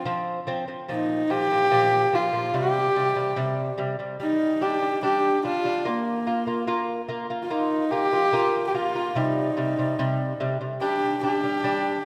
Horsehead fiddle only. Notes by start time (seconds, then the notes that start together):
0.92 D#4
1.31 G4
2.15 F4
2.55 G4
4.21 D#4
4.63 G4
5.04 G4
5.46 F4
5.87 A#3
7.43 F4
7.51 D#4
7.91 G4
8.67 G4
8.75 F4
9.16 D#4
10.81 G4
11.24 G4